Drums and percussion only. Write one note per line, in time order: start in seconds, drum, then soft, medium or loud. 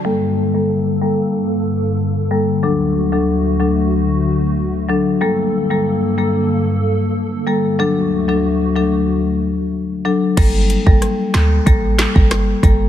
10.37 kick loud
10.37 closed hi-hat medium
10.37 crash medium
10.70 closed hi-hat medium
10.87 kick medium
11.02 cross-stick medium
11.02 closed hi-hat medium
11.34 snare loud
11.34 clap medium
11.34 closed hi-hat soft
11.67 kick medium
11.67 closed hi-hat medium
11.99 snare loud
11.99 clap medium
11.99 closed hi-hat soft
12.16 kick loud
12.31 cross-stick loud
12.31 snare medium
12.31 closed hi-hat medium
12.63 kick medium
12.63 closed hi-hat medium